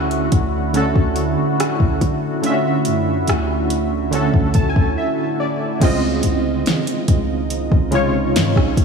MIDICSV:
0, 0, Header, 1, 5, 480
1, 0, Start_track
1, 0, Tempo, 845070
1, 1383, Time_signature, 4, 2, 24, 8
1, 5026, End_track
2, 0, Start_track
2, 0, Title_t, "Synth keys"
2, 0, Program_c, 0, 88
2, 0, Control_c, 0, 64, 127
2, 0, Note_on_c, 0, 50, 84
2, 0, Note_on_c, 0, 57, 73
2, 0, Note_on_c, 0, 61, 81
2, 0, Note_on_c, 0, 66, 75
2, 0, Note_on_c, 0, 78, 93
2, 118, Note_off_c, 0, 50, 0
2, 121, Note_off_c, 0, 57, 0
2, 124, Note_off_c, 0, 61, 0
2, 128, Note_off_c, 0, 66, 0
2, 131, Note_off_c, 0, 78, 0
2, 414, Note_on_c, 0, 50, 83
2, 420, Note_on_c, 0, 57, 78
2, 426, Note_on_c, 0, 61, 74
2, 432, Note_on_c, 0, 66, 75
2, 438, Note_on_c, 0, 69, 92
2, 1079, Note_off_c, 0, 50, 0
2, 1082, Note_off_c, 0, 57, 0
2, 1085, Note_off_c, 0, 61, 0
2, 1088, Note_off_c, 0, 66, 0
2, 1091, Note_off_c, 0, 69, 0
2, 1375, Note_on_c, 0, 50, 85
2, 1380, Note_on_c, 0, 57, 72
2, 1386, Note_on_c, 0, 61, 73
2, 1392, Note_on_c, 0, 65, 62
2, 1398, Note_on_c, 0, 76, 89
2, 1425, Note_off_c, 0, 65, 0
2, 1429, Note_on_c, 0, 66, 72
2, 2039, Note_off_c, 0, 50, 0
2, 2042, Note_off_c, 0, 57, 0
2, 2045, Note_off_c, 0, 61, 0
2, 2051, Note_off_c, 0, 76, 0
2, 2066, Note_off_c, 0, 66, 0
2, 2334, Note_on_c, 0, 50, 81
2, 2340, Note_on_c, 0, 57, 76
2, 2346, Note_on_c, 0, 61, 76
2, 2352, Note_on_c, 0, 66, 77
2, 2358, Note_on_c, 0, 69, 92
2, 2586, Note_on_c, 0, 81, 69
2, 2659, Note_off_c, 0, 81, 0
2, 2666, Note_on_c, 0, 80, 70
2, 2814, Note_off_c, 0, 80, 0
2, 2827, Note_on_c, 0, 76, 68
2, 2999, Note_off_c, 0, 50, 0
2, 3002, Note_off_c, 0, 57, 0
2, 3005, Note_off_c, 0, 61, 0
2, 3008, Note_off_c, 0, 66, 0
2, 3011, Note_off_c, 0, 69, 0
2, 3048, Note_off_c, 0, 76, 0
2, 3067, Note_on_c, 0, 74, 68
2, 3288, Note_off_c, 0, 74, 0
2, 3295, Note_on_c, 0, 49, 87
2, 3300, Note_on_c, 0, 56, 81
2, 3307, Note_on_c, 0, 60, 79
2, 3310, Control_c, 0, 64, 0
2, 3313, Note_on_c, 0, 65, 77
2, 3319, Note_on_c, 0, 75, 94
2, 3417, Control_c, 0, 64, 127
2, 3959, Note_off_c, 0, 49, 0
2, 3962, Note_off_c, 0, 56, 0
2, 3965, Note_off_c, 0, 60, 0
2, 3968, Note_off_c, 0, 65, 0
2, 3971, Note_off_c, 0, 75, 0
2, 4493, Note_on_c, 0, 49, 83
2, 4498, Note_on_c, 0, 56, 81
2, 4504, Note_on_c, 0, 48, 81
2, 4510, Note_on_c, 0, 65, 82
2, 4516, Note_on_c, 0, 73, 93
2, 4993, Note_off_c, 0, 49, 0
2, 4996, Note_off_c, 0, 56, 0
2, 4999, Note_off_c, 0, 48, 0
2, 5002, Note_off_c, 0, 65, 0
2, 5005, Note_off_c, 0, 73, 0
2, 5026, End_track
3, 0, Start_track
3, 0, Title_t, "Ambient pad"
3, 0, Program_c, 1, 92
3, 0, Note_on_c, 1, 50, 85
3, 0, Note_on_c, 1, 57, 77
3, 0, Note_on_c, 1, 64, 79
3, 0, Note_on_c, 1, 66, 95
3, 3280, Note_off_c, 1, 66, 0
3, 3281, Note_off_c, 1, 50, 0
3, 3281, Note_off_c, 1, 57, 0
3, 3281, Note_off_c, 1, 64, 0
3, 3304, Note_on_c, 1, 65, 95
3, 3305, Note_on_c, 1, 51, 85
3, 3305, Note_on_c, 1, 56, 71
3, 3305, Note_on_c, 1, 63, 76
3, 5026, Note_off_c, 1, 51, 0
3, 5026, Note_off_c, 1, 56, 0
3, 5026, Note_off_c, 1, 63, 0
3, 5026, Note_off_c, 1, 65, 0
3, 5026, End_track
4, 0, Start_track
4, 0, Title_t, "808-style bass"
4, 0, Program_c, 2, 38
4, 0, Note_on_c, 2, 38, 98
4, 164, Note_off_c, 2, 38, 0
4, 183, Note_on_c, 2, 38, 105
4, 529, Note_off_c, 2, 38, 0
4, 543, Note_on_c, 2, 38, 105
4, 774, Note_off_c, 2, 38, 0
4, 1023, Note_on_c, 2, 38, 92
4, 1138, Note_off_c, 2, 38, 0
4, 1144, Note_on_c, 2, 50, 107
4, 1624, Note_on_c, 2, 42, 88
4, 1632, Note_off_c, 2, 50, 0
4, 1851, Note_off_c, 2, 42, 0
4, 1864, Note_on_c, 2, 38, 104
4, 2441, Note_off_c, 2, 38, 0
4, 2464, Note_on_c, 2, 38, 100
4, 2579, Note_off_c, 2, 38, 0
4, 2584, Note_on_c, 2, 38, 100
4, 2699, Note_off_c, 2, 38, 0
4, 2705, Note_on_c, 2, 38, 103
4, 2824, Note_off_c, 2, 38, 0
4, 3303, Note_on_c, 2, 37, 110
4, 3534, Note_off_c, 2, 37, 0
4, 3544, Note_on_c, 2, 37, 99
4, 3774, Note_off_c, 2, 37, 0
4, 4024, Note_on_c, 2, 37, 101
4, 4369, Note_off_c, 2, 37, 0
4, 4383, Note_on_c, 2, 37, 106
4, 4743, Note_on_c, 2, 44, 99
4, 4752, Note_off_c, 2, 37, 0
4, 4857, Note_off_c, 2, 44, 0
4, 4863, Note_on_c, 2, 37, 92
4, 4978, Note_off_c, 2, 37, 0
4, 4983, Note_on_c, 2, 37, 103
4, 5026, Note_off_c, 2, 37, 0
4, 5026, End_track
5, 0, Start_track
5, 0, Title_t, "Drums"
5, 63, Note_on_c, 9, 42, 64
5, 120, Note_off_c, 9, 42, 0
5, 181, Note_on_c, 9, 42, 72
5, 183, Note_on_c, 9, 36, 97
5, 238, Note_off_c, 9, 42, 0
5, 240, Note_off_c, 9, 36, 0
5, 421, Note_on_c, 9, 42, 68
5, 478, Note_off_c, 9, 42, 0
5, 543, Note_on_c, 9, 36, 87
5, 600, Note_off_c, 9, 36, 0
5, 657, Note_on_c, 9, 42, 50
5, 714, Note_off_c, 9, 42, 0
5, 908, Note_on_c, 9, 42, 81
5, 910, Note_on_c, 9, 37, 117
5, 965, Note_off_c, 9, 42, 0
5, 967, Note_off_c, 9, 37, 0
5, 1023, Note_on_c, 9, 36, 73
5, 1080, Note_off_c, 9, 36, 0
5, 1143, Note_on_c, 9, 36, 86
5, 1144, Note_on_c, 9, 42, 60
5, 1200, Note_off_c, 9, 36, 0
5, 1201, Note_off_c, 9, 42, 0
5, 1383, Note_on_c, 9, 42, 70
5, 1440, Note_off_c, 9, 42, 0
5, 1619, Note_on_c, 9, 42, 74
5, 1675, Note_off_c, 9, 42, 0
5, 1860, Note_on_c, 9, 42, 65
5, 1871, Note_on_c, 9, 37, 111
5, 1917, Note_off_c, 9, 42, 0
5, 1928, Note_off_c, 9, 37, 0
5, 2103, Note_on_c, 9, 42, 72
5, 2160, Note_off_c, 9, 42, 0
5, 2343, Note_on_c, 9, 42, 65
5, 2400, Note_off_c, 9, 42, 0
5, 2464, Note_on_c, 9, 36, 86
5, 2520, Note_off_c, 9, 36, 0
5, 2578, Note_on_c, 9, 42, 49
5, 2584, Note_on_c, 9, 36, 88
5, 2635, Note_off_c, 9, 42, 0
5, 2640, Note_off_c, 9, 36, 0
5, 2705, Note_on_c, 9, 36, 93
5, 2761, Note_off_c, 9, 36, 0
5, 3303, Note_on_c, 9, 42, 73
5, 3303, Note_on_c, 9, 49, 97
5, 3304, Note_on_c, 9, 36, 123
5, 3360, Note_off_c, 9, 36, 0
5, 3360, Note_off_c, 9, 42, 0
5, 3360, Note_off_c, 9, 49, 0
5, 3538, Note_on_c, 9, 42, 79
5, 3595, Note_off_c, 9, 42, 0
5, 3783, Note_on_c, 9, 42, 42
5, 3790, Note_on_c, 9, 38, 112
5, 3840, Note_off_c, 9, 42, 0
5, 3847, Note_off_c, 9, 38, 0
5, 3904, Note_on_c, 9, 42, 68
5, 3961, Note_off_c, 9, 42, 0
5, 4022, Note_on_c, 9, 42, 77
5, 4024, Note_on_c, 9, 36, 94
5, 4079, Note_off_c, 9, 42, 0
5, 4080, Note_off_c, 9, 36, 0
5, 4262, Note_on_c, 9, 42, 68
5, 4319, Note_off_c, 9, 42, 0
5, 4383, Note_on_c, 9, 36, 94
5, 4440, Note_off_c, 9, 36, 0
5, 4497, Note_on_c, 9, 42, 53
5, 4554, Note_off_c, 9, 42, 0
5, 4748, Note_on_c, 9, 42, 78
5, 4750, Note_on_c, 9, 38, 123
5, 4805, Note_off_c, 9, 42, 0
5, 4807, Note_off_c, 9, 38, 0
5, 4862, Note_on_c, 9, 36, 80
5, 4870, Note_on_c, 9, 37, 88
5, 4919, Note_off_c, 9, 36, 0
5, 4926, Note_off_c, 9, 37, 0
5, 4983, Note_on_c, 9, 36, 92
5, 4983, Note_on_c, 9, 42, 69
5, 5026, Note_off_c, 9, 36, 0
5, 5026, Note_off_c, 9, 42, 0
5, 5026, End_track
0, 0, End_of_file